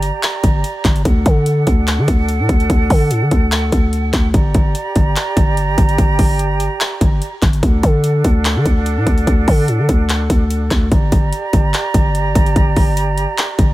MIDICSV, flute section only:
0, 0, Header, 1, 2, 480
1, 0, Start_track
1, 0, Key_signature, -2, "minor"
1, 0, Tempo, 410959
1, 1230, Time_signature, 4, 2, 24, 8
1, 16045, End_track
2, 0, Start_track
2, 0, Title_t, "Flute section"
2, 0, Program_c, 0, 73
2, 0, Note_on_c, 0, 67, 79
2, 0, Note_on_c, 0, 74, 70
2, 0, Note_on_c, 0, 82, 83
2, 1192, Note_off_c, 0, 67, 0
2, 1192, Note_off_c, 0, 74, 0
2, 1192, Note_off_c, 0, 82, 0
2, 1231, Note_on_c, 0, 62, 77
2, 1232, Note_on_c, 0, 69, 70
2, 1232, Note_on_c, 0, 78, 85
2, 5032, Note_off_c, 0, 62, 0
2, 5033, Note_off_c, 0, 69, 0
2, 5033, Note_off_c, 0, 78, 0
2, 5070, Note_on_c, 0, 67, 77
2, 5070, Note_on_c, 0, 74, 72
2, 5070, Note_on_c, 0, 82, 88
2, 8539, Note_off_c, 0, 74, 0
2, 8568, Note_off_c, 0, 67, 0
2, 8588, Note_off_c, 0, 82, 0
2, 8909, Note_on_c, 0, 62, 81
2, 8909, Note_on_c, 0, 69, 69
2, 8910, Note_on_c, 0, 78, 85
2, 12711, Note_off_c, 0, 62, 0
2, 12711, Note_off_c, 0, 69, 0
2, 12711, Note_off_c, 0, 78, 0
2, 12751, Note_on_c, 0, 67, 76
2, 12751, Note_on_c, 0, 74, 69
2, 12751, Note_on_c, 0, 82, 88
2, 16045, Note_off_c, 0, 67, 0
2, 16045, Note_off_c, 0, 74, 0
2, 16045, Note_off_c, 0, 82, 0
2, 16045, End_track
0, 0, End_of_file